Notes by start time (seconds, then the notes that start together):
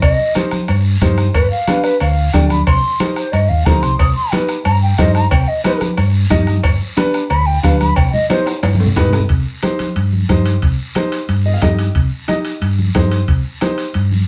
0.01 C2 D#5, bombo low, bombo rim, cowbell, long guiro
0.19 high conga
0.35 D#4 G4 C5, bombo rim, cowbell, high conga, short guiro
0.51 bombo rim, high conga, short guiro
0.68 G2, bombo rim, cowbell, long guiro
1.01 G2 D#4 G4 C5, bombo low, bombo rim, cowbell, high conga, low conga, short guiro
1.18 bombo rim, short guiro
1.34 G1 B4, bombo low, bombo rim, cowbell, long guiro
1.51 F5, high conga
1.67 D4 G4 B4, bombo rim, cowbell, high conga, short guiro
1.84 B4, bombo rim, short guiro
2.00 D2 F5, bombo rim, cowbell, high conga, long guiro
2.33 D2 D4 G4 D5 G5, bombo low, bombo rim, cowbell, high conga, low timbale, short guiro
2.50 B5, bombo rim, high conga, short guiro
2.67 C2 C6, bombo low, bombo rim, cowbell, long guiro
2.84 high conga
3.00 D#4 G4 C5, bombo rim, cowbell, high conga, short guiro
3.16 C5, bombo rim, short guiro
3.32 G2 D#5, bombo rim, cowbell, high conga, long guiro
3.49 D#2 F5
3.66 D2 D#4 G4 C5 A#5, bombo low, bombo rim, cowbell, high conga, low conga, low timbale, short guiro
3.82 C2 C6, bombo rim, short guiro
3.99 C2 D#6, bombo low, bombo rim, cowbell, long guiro
4.16 C6, high conga
4.32 D#4 G4 B4, bombo rim, cowbell, high conga, short guiro
4.48 bombo rim, short guiro
4.65 G2 A#5, bombo rim, cowbell, high conga, long guiro
4.83 G5
4.98 G2 D#4 G4 C5 D#5, bombo low, bombo rim, cowbell, high conga, low timbale, short guiro
5.15 A#5, bombo rim, short guiro
5.31 C2 G5, bombo low, bombo rim, cowbell, long guiro
5.48 D#5, high conga
5.64 D#4 G4 B4 C5, bombo rim, cowbell, high conga, short guiro
5.81 bombo rim, high conga, short guiro
5.97 G2, bombo rim, cowbell, high conga, long guiro
6.30 G2 D#4 G4 D#5, bombo low, bombo rim, cowbell, high conga, low conga, short guiro
6.47 bombo rim, high conga, short guiro
6.63 G1, bombo low, bombo rim, cowbell, long guiro
6.81 high conga
6.97 D4 G4 B4, bombo rim, cowbell, high conga, short guiro
7.14 bombo rim, short guiro
7.30 D2 B5, bombo rim, cowbell, high conga, long guiro
7.46 G5
7.63 D2 D4 G4 B4 F5, bombo low, bombo rim, cowbell, high conga, short guiro
7.80 B5, bombo rim, high conga, short guiro
7.96 C2 G5, bombo low, bombo rim, cowbell, long guiro
8.13 D#5, high conga, low conga
8.30 D#4 G4 C5, bombo rim, cowbell, high conga, high timbale, short guiro
8.46 bombo rim, high timbale, short guiro
8.63 G2, bombo rim, cowbell, high conga, high timbale, long guiro
8.74 high conga
8.80 low timbale
8.86 low conga
8.96 G2 D#4 G4 B4, bombo low, bombo rim, cowbell, low conga, low timbale, short guiro
9.08 low conga
9.13 bombo rim, low timbale, short guiro
9.19 low conga
9.29 C2, bombo low, high conga, high timbale, long guiro
9.62 D#4 G4 C5, bombo rim, high conga, high timbale, short guiro
9.79 high conga, high timbale, short guiro
9.96 G2, high timbale, long guiro
10.13 high conga
10.29 G2 D#4 G4 C5, bombo low, bombo rim, high conga, high timbale, short guiro
10.46 high timbale, short guiro
10.62 C2, bombo low, high conga, high timbale, long guiro
10.95 D#4 G4 C5, bombo rim, high conga, high timbale, short guiro
11.12 high timbale, short guiro
11.29 G2, high conga, high timbale, long guiro
11.46 D#5
11.54 F5
11.62 G2 D#4 G4 D#5 G5, bombo low, bombo rim, high conga, high timbale, low timbale, short guiro
11.78 high timbale, short guiro
11.95 C2, bombo low, high conga, high timbale, long guiro
12.28 D#4 G4 D#5, bombo rim, high conga, high timbale, short guiro
12.45 high timbale, short guiro
12.61 G2, high conga, high timbale, long guiro
12.79 high conga
12.95 G2 D#4 G4 C5, bombo low, bombo rim, high conga, high timbale, low timbale, short guiro
13.12 high timbale, short guiro
13.28 C2, bombo low, high conga, high timbale, long guiro
13.61 D#4 G4 C5, bombo rim, high conga, high timbale, short guiro
13.78 high timbale, short guiro
13.94 G2, high conga, high timbale, long guiro
14.12 high conga